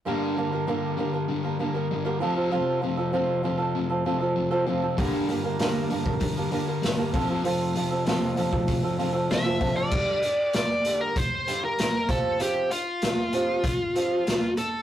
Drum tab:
CC |----------------|----------------|----------------|----------------|
HH |----------------|----------------|o-o-o-o-o-o-o-o-|o-o-o-o-o-o-o-o-|
SD |----------------|----------------|----o-------o---|----o-------o---|
BD |----------------|----------------|o------oo-----o-|-------oo-----o-|

CC |x---------------|----------------|
HH |--x-x-x-x-x-x-x-|x-x-x-x-x-x-x-x-|
SD |----o-------o---|----o-------o---|
BD |o-------o-----o-|--------o-------|